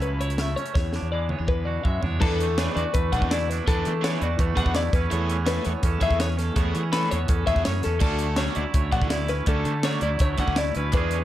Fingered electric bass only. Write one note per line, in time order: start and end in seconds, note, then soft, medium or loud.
0.00 0.55 C#2 medium
0.75 0.98 E2 medium
1.02 1.33 E2 medium
1.40 1.78 E2 medium
1.85 2.01 F#2 medium
2.04 2.20 E2 medium
2.22 2.67 E2 medium
2.76 2.84 E2 loud
2.95 3.10 E2 loud
3.13 3.20 B1 medium
3.22 3.60 E2 loud
3.68 3.82 E2 loud
3.87 4.16 E3 medium
4.22 4.36 E2 medium
4.39 4.54 E2 loud
4.57 4.65 E2 loud
4.66 4.89 E2 medium
4.93 5.08 E2 medium
5.12 5.58 E2 loud
5.66 5.74 E2 loud
5.84 5.99 E2 loud
6.02 6.10 E2 medium
6.11 6.49 E2 loud
6.57 6.72 E2 loud
6.76 7.06 E3 medium
7.12 7.27 E2 medium
7.29 7.45 E2 medium
7.48 7.55 E2 medium
7.56 7.64 E2 medium
7.67 7.83 F#2 medium
7.86 8.01 E2 medium
8.01 8.48 D2 loud
8.57 8.64 D2 loud
8.74 8.90 D2 loud
8.93 9.01 A1 medium
9.01 9.40 D2 loud
9.47 9.63 D2 loud
9.66 9.97 D3 medium
10.02 10.17 D2 medium
10.20 10.36 D2 loud
10.39 10.47 D2 loud
10.47 10.70 D2 medium
10.76 10.91 D2 medium
10.93 11.24 E2 loud